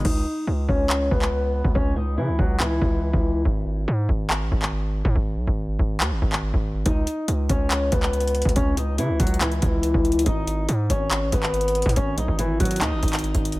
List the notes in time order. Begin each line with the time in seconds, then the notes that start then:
0.05 C#2 D#4 D#5, kick, crash
0.47 C#2
0.69 C#2 C#4 C#5, kick
0.90 clap
1.11 C#2 B3 B4, kick
1.22 clap
1.64 C#2, kick
1.75 C#2 C#4 C#5, kick
1.96 D#4 D#5
2.17 C#3 E3 E4
2.28 C#2
2.39 C#2 F#3 F#4, kick
2.60 E3 E4, clap
2.81 C#2, kick
3.13 C#2, kick
3.45 G#1, kick
3.88 G#2
4.09 G#1, kick
4.30 clap
4.41 A1
4.52 G#1, kick
4.62 clap
5.05 G#2, kick
5.15 G#1, kick
5.37 B1
5.47 G#1, kick
5.79 G#1, kick
6.00 D#2, clap
6.11 G#1
6.22 G#1, kick
6.32 clap
6.54 G#1, kick
6.86 C#2 D#4 D#5, kick, closed hi-hat
7.07 closed hi-hat
7.28 C#2, closed hi-hat
7.49 C#2 C#4 C#5, kick, closed hi-hat
7.71 clap, closed hi-hat
7.92 C#2 B3 B4, kick, closed hi-hat
8.03 clap
8.13 closed hi-hat
8.20 closed hi-hat
8.28 closed hi-hat
8.35 closed hi-hat
8.42 C#2, kick, closed hi-hat
8.49 closed hi-hat
8.56 C#2 C#4 C#5, kick, closed hi-hat
8.77 D#4 D#5, closed hi-hat
8.98 C#3 E3 E4, closed hi-hat
9.09 C#2
9.20 C#2 F#3 F#4, kick, closed hi-hat
9.27 closed hi-hat
9.34 closed hi-hat
9.41 E3 E4, clap, closed hi-hat
9.52 closed hi-hat
9.62 C#2, kick, closed hi-hat
9.83 closed hi-hat
9.94 C#2, kick
10.05 closed hi-hat
10.12 closed hi-hat
10.19 closed hi-hat
10.26 G#1 D#4 D#5, kick, closed hi-hat
10.47 closed hi-hat
10.69 G#2, closed hi-hat
10.90 G#1 C#4 C#5, kick, closed hi-hat
11.11 clap, closed hi-hat
11.22 A1
11.32 G#1 B3 B4, kick, closed hi-hat
11.43 clap
11.54 closed hi-hat
11.61 closed hi-hat
11.68 closed hi-hat
11.75 closed hi-hat
11.82 G#2, kick, closed hi-hat
11.89 closed hi-hat
11.96 G#1 C#4 C#5, kick, closed hi-hat
12.18 B1 D#4 D#5, closed hi-hat
12.28 G#1, kick
12.39 E3 E4, closed hi-hat
12.60 G#1 F#3 F#4, kick, closed hi-hat
12.65 closed hi-hat
12.71 closed hi-hat
12.76 closed hi-hat
12.81 D#2 D#4 D#5, clap, closed hi-hat
12.92 G#1
13.03 G#1, kick, closed hi-hat
13.08 closed hi-hat
13.13 clap, closed hi-hat
13.19 closed hi-hat
13.24 closed hi-hat
13.35 G#1, kick, closed hi-hat
13.45 closed hi-hat
13.52 closed hi-hat